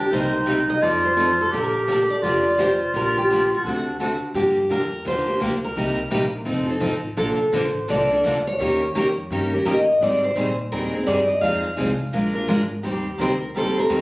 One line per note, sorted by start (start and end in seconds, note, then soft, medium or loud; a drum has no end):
0.00 0.13 D4 medium
0.00 0.13 G4 medium
0.11 0.69 C2 medium
0.11 0.33 C3 medium
0.11 0.33 G3 medium
0.11 0.33 A#3 medium
0.11 0.83 D#4 medium
0.11 0.33 D#4 medium
0.11 0.34 G4 medium
0.11 0.45 C5 medium
0.46 0.58 C3 medium
0.46 0.58 G3 medium
0.46 0.58 A#3 medium
0.46 0.58 D#4 medium
0.46 0.58 G4 medium
0.70 0.84 D#5 medium
0.81 1.39 F2 medium
0.81 1.03 F3 medium
0.81 1.03 C4 medium
0.81 1.03 D#4 medium
0.81 1.52 F4 medium
0.81 1.03 A4 medium
0.81 1.05 D5 medium
1.05 1.41 C5 medium
1.17 1.28 F3 medium
1.17 1.28 C4 medium
1.17 1.28 D#4 medium
1.17 1.28 A4 medium
1.41 1.53 A4 medium
1.51 2.10 A#1 medium
1.51 1.73 D3 medium
1.51 1.74 F3 medium
1.51 1.73 A#3 medium
1.51 1.74 D4 medium
1.51 2.24 G4 medium
1.51 1.74 G4 medium
1.51 1.92 A#4 medium
1.87 1.99 D3 medium
1.87 1.99 F3 medium
1.87 1.99 A#3 medium
1.87 1.99 D4 medium
1.87 1.99 G4 medium
1.92 2.06 A4 medium
2.10 2.60 D5 medium
2.22 2.80 F1 medium
2.22 2.44 D3 medium
2.22 2.44 F3 medium
2.22 2.44 A#3 medium
2.22 2.45 D4 medium
2.22 3.65 F4 medium
2.22 2.45 G4 medium
2.59 2.70 D3 medium
2.59 2.70 F3 medium
2.59 2.70 A#3 loud
2.59 2.70 D4 medium
2.59 2.70 G4 loud
2.59 2.93 C5 medium
2.94 3.50 A#1 medium
2.94 3.15 D3 medium
2.94 3.15 F3 medium
2.94 3.15 A#3 medium
2.94 3.16 D4 medium
2.94 3.15 G4 medium
2.94 3.17 A#4 medium
3.18 3.50 G4 medium
3.30 3.41 D3 medium
3.30 3.41 F3 medium
3.30 3.41 A#3 medium
3.30 3.41 D4 medium
3.30 3.41 G4 medium
3.54 4.19 F#4 medium
3.64 4.21 D2 medium
3.64 3.86 D3 medium
3.64 3.86 A3 medium
3.64 3.87 C4 medium
3.64 3.99 D4 medium
3.64 3.87 F#4 medium
3.64 3.87 A4 medium
4.00 4.11 D3 medium
4.00 4.11 A3 medium
4.00 4.12 C4 medium
4.00 4.33 D4 medium
4.00 4.11 F#4 medium
4.00 4.12 A4 medium
4.34 4.69 G2 medium
4.34 4.56 D3 medium
4.34 4.57 F3 medium
4.34 4.57 A#3 medium
4.34 4.57 D4 medium
4.34 4.72 G4 medium
4.34 4.57 G4 medium
4.69 5.05 F2 medium
4.69 4.81 D3 medium
4.69 4.82 F3 medium
4.69 4.82 A#3 medium
4.69 4.82 D4 medium
4.69 4.82 G4 medium
4.69 5.07 A#4 medium
5.05 5.41 D#2 medium
5.05 5.26 D3 medium
5.05 5.26 F3 medium
5.05 5.27 A#3 medium
5.05 5.27 D4 medium
5.05 5.26 G4 medium
5.05 5.40 C5 loud
5.27 5.40 A#3 soft
5.27 5.40 D4 soft
5.27 5.40 G4 soft
5.40 5.76 D2 medium
5.40 5.52 D3 medium
5.40 5.52 F3 medium
5.40 5.52 A#3 loud
5.40 5.53 D4 medium
5.40 5.53 G4 loud
5.64 6.31 A#4 medium
5.77 6.11 C2 medium
5.77 5.98 C3 medium
5.77 5.98 G3 medium
5.77 5.98 A#3 medium
5.77 5.98 D#4 medium
5.77 5.98 G4 medium
6.10 6.46 A#1 medium
6.10 6.22 C3 medium
6.10 6.23 G3 medium
6.10 6.23 A#3 medium
6.10 6.23 D#4 medium
6.10 6.23 G4 medium
6.45 6.81 F1 medium
6.45 6.67 F3 medium
6.45 6.67 C4 medium
6.45 6.66 D#4 medium
6.45 6.65 A4 medium
6.67 6.79 C4 soft
6.67 6.80 D#4 soft
6.67 6.80 A4 soft
6.80 7.17 A1 medium
6.80 6.93 F3 medium
6.80 6.93 C4 medium
6.80 6.93 D#4 medium
6.80 6.93 A4 medium
7.17 7.38 A#1 medium
7.17 7.39 D3 medium
7.17 7.38 F3 medium
7.17 7.39 A#3 medium
7.17 7.39 D4 medium
7.17 7.39 A4 medium
7.17 7.55 A4 medium
7.39 muted upright bass stroke soft
7.53 7.88 A1 medium
7.53 7.65 D3 medium
7.53 7.65 F3 medium
7.53 7.65 A#3 medium
7.53 7.65 D4 medium
7.53 7.66 A4 medium
7.53 7.87 C5 medium
7.88 8.24 C2 medium
7.88 8.10 D3 medium
7.88 8.10 F3 medium
7.88 8.10 A#3 medium
7.88 8.10 D4 medium
7.88 8.10 A4 medium
7.88 8.22 D5 loud
8.11 8.25 A#3 soft
8.11 8.24 D4 soft
8.11 8.24 A4 medium
8.24 8.59 D2 medium
8.24 8.36 D3 medium
8.24 8.36 F3 medium
8.24 8.37 A#3 medium
8.24 8.37 D4 medium
8.24 8.37 A4 medium
8.47 9.14 C#5 medium
8.60 8.95 D#2 medium
8.60 8.81 D#3 medium
8.60 8.81 A#3 medium
8.60 8.81 C#4 medium
8.60 8.81 G4 medium
8.60 8.82 A#4 medium
8.95 9.30 F2 medium
8.95 9.06 D#3 medium
8.95 9.06 A#3 loud
8.95 9.07 C#4 medium
8.95 9.07 G4 medium
8.95 9.07 A#4 loud
9.30 9.65 G2 medium
9.30 9.52 D#3 medium
9.30 9.52 A#3 medium
9.30 9.52 C#4 medium
9.30 9.52 G4 medium
9.30 9.52 A#4 medium
9.53 9.65 C#4 soft
9.53 9.65 G4 medium
9.53 9.65 A#4 medium
9.65 10.00 A2 medium
9.65 9.77 D#3 medium
9.65 9.77 A#3 medium
9.65 9.77 C#4 medium
9.65 9.77 G4 medium
9.65 9.77 A#4 medium
9.65 10.02 D#5 medium
10.01 10.35 G#2 medium
10.01 10.23 D#3 medium
10.01 10.23 G3 medium
10.01 10.23 C4 medium
10.01 10.23 D#4 medium
10.01 10.23 G#4 medium
10.01 10.24 D5 medium
10.25 10.57 C5 medium
10.36 10.71 A#2 medium
10.36 10.48 D#3 medium
10.36 10.48 G3 medium
10.36 10.48 C4 medium
10.36 10.48 D#4 medium
10.36 10.49 G#4 medium
10.72 11.07 D#2 medium
10.72 10.93 D#3 medium
10.72 10.93 G3 medium
10.72 10.93 C4 medium
10.72 10.93 D#4 medium
10.72 10.92 G#4 medium
10.72 11.09 A#4 medium
10.94 11.08 C4 soft
10.94 11.07 D#4 soft
10.94 11.07 G#4 medium
11.07 11.42 G2 medium
11.07 11.19 D#3 medium
11.07 11.19 G3 medium
11.07 11.19 C4 medium
11.07 11.19 D#4 medium
11.07 11.19 G#4 loud
11.07 11.27 D5 medium
11.28 11.41 D#5 medium
11.41 11.77 F2 medium
11.41 11.64 F3 medium
11.41 11.64 G#3 medium
11.41 11.64 C4 medium
11.41 11.64 D#4 medium
11.41 11.64 F4 medium
11.41 11.64 G#4 medium
11.41 11.65 C5 medium
11.41 12.66 F5 loud
11.76 11.98 C2 medium
11.76 11.89 F3 medium
11.76 11.90 G#3 medium
11.76 11.89 C4 medium
11.76 11.89 D#4 medium
11.76 11.90 F4 medium
11.76 11.89 G#4 medium
11.76 11.91 C5 medium
12.00 muted upright bass stroke soft
12.13 12.47 A#1 medium
12.13 12.34 F3 medium
12.13 12.34 G#3 medium
12.13 12.34 D4 medium
12.13 12.35 F4 medium
12.13 12.34 A#4 medium
12.35 12.47 D4 soft
12.35 12.48 F4 soft
12.35 12.48 A#4 medium
12.48 12.83 G#1 medium
12.48 12.60 F3 medium
12.48 12.60 G#3 medium
12.48 12.60 D4 medium
12.48 12.60 F4 loud
12.48 12.60 A#4 loud
12.83 13.19 D#2 medium
12.83 13.05 D#3 medium
12.83 13.05 G3 medium
12.83 13.05 A#3 medium
12.83 13.06 C4 medium
12.83 13.05 D#4 medium
12.83 13.06 G4 medium
12.83 13.21 G4 medium
12.83 13.06 C5 medium
13.18 13.54 D2 medium
13.18 13.31 D#3 medium
13.18 13.32 G3 medium
13.18 13.30 A#3 medium
13.18 13.32 C4 medium
13.18 13.30 D#4 medium
13.18 13.32 G4 loud
13.18 13.57 A#4 medium
13.18 13.32 C5 loud
13.55 13.89 D#2 medium
13.55 13.77 D#3 medium
13.55 13.77 G3 medium
13.55 13.76 A#3 medium
13.55 13.77 C4 medium
13.55 13.77 D#4 medium
13.55 13.77 G4 medium
13.55 13.77 A4 medium
13.55 13.76 C5 medium
13.77 13.89 C4 soft
13.77 13.89 G4 soft
13.77 14.01 A#4 medium
13.77 13.90 C5 medium
13.89 14.01 F2 medium
13.89 14.01 D#3 loud
13.89 14.01 G3 loud
13.89 14.01 A#3 medium
13.89 14.01 C4 medium
13.89 14.01 D#4 medium
13.89 14.01 G4 loud
13.89 14.01 C5 medium